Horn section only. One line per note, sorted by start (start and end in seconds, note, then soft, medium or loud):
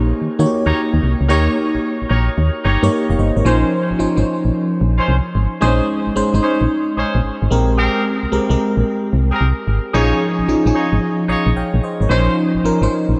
0.65 0.81 D#4 medium
0.65 0.81 G4 medium
0.65 0.81 A#4 medium
0.65 0.81 C#5 medium
1.28 1.54 D#4 medium
1.28 1.54 G4 medium
1.28 1.54 A#4 medium
1.28 1.55 C#5 loud
2.10 2.31 D#4 medium
2.10 2.31 G4 medium
2.10 2.31 A#4 medium
2.10 2.31 C#5 medium
2.64 2.85 D#4 medium
2.64 2.85 G4 medium
2.64 2.85 A#4 medium
2.64 2.85 C#5 medium
3.45 3.71 C#4 medium
3.45 3.71 D#4 medium
3.45 3.71 F4 medium
3.45 3.71 C5 loud
4.98 5.14 C#4 medium
4.98 5.14 D#4 medium
4.98 5.14 F4 medium
4.98 5.14 C5 medium
5.61 5.87 C#4 loud
5.61 5.87 D#4 medium
5.61 5.87 G#4 medium
5.61 5.87 C5 loud
6.42 6.64 C#4 medium
6.42 6.64 D#4 medium
6.42 6.64 G#4 medium
6.42 6.64 C5 medium
6.97 7.18 C#4 medium
6.97 7.18 D#4 medium
6.97 7.18 G#4 medium
6.97 7.18 C5 medium
7.77 8.03 C4 loud
7.77 8.03 G4 medium
7.77 8.03 G#4 medium
7.77 8.03 A#4 loud
9.31 9.46 C4 medium
9.31 9.46 G4 medium
9.31 9.46 G#4 medium
9.31 9.47 A#4 medium
9.93 10.19 D#4 medium
9.93 10.19 F4 medium
9.93 10.19 G#4 medium
9.93 10.19 C#5 loud
10.74 10.96 D#4 medium
10.74 10.96 F4 medium
10.74 10.96 G#4 medium
10.74 10.96 C#5 medium
11.28 11.50 D#4 medium
11.28 11.50 F4 medium
11.28 11.50 G#4 medium
11.28 11.50 C#5 medium
12.09 12.35 C#4 medium
12.09 12.35 D#4 medium
12.09 12.35 F4 medium
12.09 12.35 C5 loud